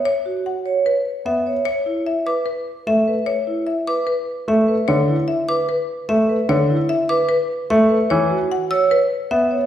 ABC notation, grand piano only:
X:1
M:4/4
L:1/8
Q:1/4=149
K:Bm
V:1 name="Grand piano"
z6 B, z | z6 A, z | z6 A, z | D, z4 z A, z |
D, z4 z A, z | E, z4 z B, z |]